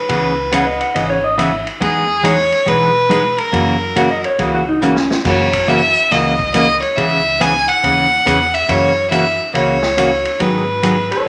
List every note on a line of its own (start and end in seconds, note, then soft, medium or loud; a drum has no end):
0.00 0.81 B4 medium
0.09 0.78 C#2 medium
0.09 0.31 C#3 medium
0.09 0.31 E3 medium
0.09 0.31 B3 medium
0.09 0.31 C#4 medium
0.09 0.32 G#4 medium
0.09 kick soft
0.09 ride medium
0.51 0.64 C#3 medium
0.51 0.64 E3 medium
0.51 0.64 B3 medium
0.51 0.64 C#4 medium
0.51 0.64 G#4 medium
0.51 0.67 F#5 medium
0.51 kick soft
0.51 hi-hat pedal medium
0.51 ride medium
0.66 0.80 D#5 medium
0.80 0.94 F#5 medium
0.80 ride soft
0.94 1.64 G#1 medium
0.94 1.17 C#3 medium
0.94 1.17 E3 medium
0.94 1.17 B3 medium
0.94 1.18 C#4 medium
0.94 1.18 G#4 medium
0.94 1.09 D#5 medium
0.94 kick soft
0.94 ride medium
1.10 1.24 C#5 medium
1.24 1.38 D#5 medium
1.38 1.50 C#3 medium
1.38 1.50 E3 medium
1.38 1.50 B3 medium
1.38 1.50 C#4 medium
1.38 1.50 G#4 medium
1.38 1.65 E5 medium
1.38 kick soft
1.38 hi-hat pedal medium
1.38 ride medium
1.67 ride soft
1.80 2.50 E2 medium
1.80 2.03 E3 soft
1.80 2.03 G#3 medium
1.80 2.03 B3 medium
1.80 2.03 D#4 medium
1.80 2.03 G#4 medium
1.80 2.26 G#4 medium
1.80 kick soft
1.80 ride medium
2.23 2.35 E3 medium
2.23 2.35 G#3 medium
2.23 2.36 B3 medium
2.23 2.36 D#4 medium
2.23 2.36 G#4 medium
2.23 2.70 C#5 loud
2.23 kick soft
2.23 hi-hat pedal medium
2.23 ride medium
2.52 ride soft
2.66 3.36 B1 medium
2.66 2.89 E3 soft
2.66 2.89 G#3 medium
2.66 2.89 B3 medium
2.66 2.89 D#4 medium
2.66 2.89 G#4 medium
2.66 3.40 B4 loud
2.66 kick soft
2.66 ride medium
3.09 3.21 E3 medium
3.09 3.22 G#3 medium
3.09 3.22 B3 medium
3.09 3.22 D#4 medium
3.09 3.22 G#4 medium
3.09 kick soft
3.09 hi-hat pedal medium
3.09 ride medium
3.38 4.24 A#4 medium
3.38 ride soft
3.52 4.22 F#2 medium
3.52 3.75 C#3 soft
3.52 3.75 E3 medium
3.52 3.75 A#3 medium
3.52 3.75 C#4 medium
3.52 3.75 F#4 medium
3.52 kick soft
3.52 ride medium
3.96 4.08 C#3 medium
3.96 4.08 E3 medium
3.96 4.08 A#3 medium
3.96 4.08 C#4 medium
3.96 4.08 F#4 medium
3.96 4.11 F#5 medium
3.96 kick soft
3.96 hi-hat pedal medium
3.96 ride medium
4.10 4.24 D#5 medium
4.24 4.39 C#5 medium
4.24 ride soft
4.38 5.08 C#2 medium
4.38 4.61 C#3 medium
4.38 4.61 E3 medium
4.38 4.61 A#3 medium
4.38 4.61 C#4 medium
4.38 4.61 F#4 medium
4.38 4.53 G#4 medium
4.38 kick soft
4.38 ride medium
4.54 4.68 F#4 medium
4.69 4.82 D#4 medium
4.81 4.94 C#3 medium
4.81 4.94 E3 medium
4.81 4.94 A#3 medium
4.81 4.94 C#4 medium
4.81 5.17 C#4 medium
4.81 4.94 F#4 medium
4.81 hi-hat pedal medium
4.96 snare medium
5.11 snare medium
5.24 5.94 F#2 medium
5.24 5.47 C#3 soft
5.24 5.47 E3 medium
5.24 5.47 A#3 soft
5.24 5.47 C#4 medium
5.24 5.48 F#4 medium
5.24 5.70 C#5 medium
5.24 kick medium
5.24 snare soft
5.24 crash medium
5.53 kick medium
5.53 ride medium
5.67 5.79 C#3 medium
5.67 5.80 E3 medium
5.67 5.80 A#3 medium
5.67 5.80 C#4 medium
5.67 5.80 F#4 medium
5.67 6.13 E5 loud
5.67 kick soft
5.67 hi-hat pedal medium
6.11 6.80 C#2 medium
6.11 6.33 C#3 soft
6.11 6.33 E3 soft
6.11 6.33 A#3 medium
6.11 6.33 C#4 soft
6.11 6.34 F#4 medium
6.11 6.53 D#5 medium
6.11 kick soft
6.11 snare soft
6.11 ride medium
6.39 kick medium
6.54 6.66 C#3 medium
6.54 6.66 E3 medium
6.54 6.66 A#3 medium
6.54 6.66 C#4 medium
6.54 6.66 F#4 medium
6.54 6.80 D#5 loud
6.54 kick soft
6.54 hi-hat pedal medium
6.54 ride medium
6.82 6.98 C#5 medium
6.82 ride soft
6.96 7.66 C#2 medium
6.96 7.19 C#3 medium
6.96 7.19 E3 medium
6.96 7.19 B3 medium
6.96 7.19 C#4 medium
6.96 7.19 G#4 medium
6.96 7.43 E5 loud
6.96 kick soft
6.96 ride medium
7.40 7.52 C#3 medium
7.40 7.52 E3 medium
7.40 7.52 B3 medium
7.40 7.52 C#4 medium
7.40 7.52 G#4 medium
7.40 7.69 G#5 loud
7.40 kick soft
7.40 hi-hat pedal medium
7.40 ride medium
7.68 8.56 F#5 loud
7.68 ride soft
7.83 8.20 D#2 medium
7.83 8.05 C#3 medium
7.83 8.05 E3 medium
7.83 8.05 B3 soft
7.83 8.05 C#4 medium
7.83 8.06 G#4 soft
7.83 kick soft
7.83 ride medium
8.26 8.63 E2 medium
8.26 8.38 C#3 medium
8.26 8.37 E3 medium
8.26 8.38 B3 medium
8.26 8.38 C#4 medium
8.26 8.38 G#4 medium
8.26 kick soft
8.26 hi-hat pedal medium
8.26 ride medium
8.54 8.71 E5 medium
8.54 ride soft
8.68 9.38 F#2 loud
8.68 8.91 C#3 soft
8.68 8.91 E3 medium
8.68 8.91 A#3 medium
8.68 8.91 C#4 medium
8.68 8.91 F#4 medium
8.68 9.10 C#5 loud
8.68 kick soft
8.68 ride medium
9.11 9.23 C#3 medium
9.11 9.23 E3 medium
9.11 9.23 A#3 medium
9.11 9.23 C#4 medium
9.11 9.24 F#4 medium
9.11 9.51 E5 loud
9.11 kick soft
9.11 hi-hat pedal medium
9.11 ride medium
9.54 10.23 C#2 medium
9.54 9.76 C#3 medium
9.54 9.76 E3 medium
9.54 9.76 A#3 medium
9.54 9.77 C#4 soft
9.54 9.77 F#4 medium
9.54 10.42 C#5 medium
9.54 kick soft
9.54 ride medium
9.82 snare medium
9.97 10.09 C#3 medium
9.97 10.09 E3 medium
9.97 10.09 A#3 medium
9.97 10.09 C#4 medium
9.97 10.09 F#4 medium
9.97 kick soft
9.97 hi-hat pedal medium
9.97 ride medium
10.25 ride soft
10.39 11.09 G#2 medium
10.39 10.62 D#3 medium
10.39 10.62 F#3 medium
10.39 10.62 B3 medium
10.39 10.63 D#4 medium
10.39 10.63 G#4 medium
10.39 11.28 B4 medium
10.39 kick soft
10.39 ride medium
10.82 10.95 D#3 medium
10.82 10.95 F#3 medium
10.82 10.95 B3 medium
10.82 10.95 D#4 medium
10.82 10.95 G#4 medium
10.82 kick soft
10.82 hi-hat pedal medium
10.82 ride medium
11.11 11.25 A4 medium
11.11 11.25 C#5 medium
11.11 ride soft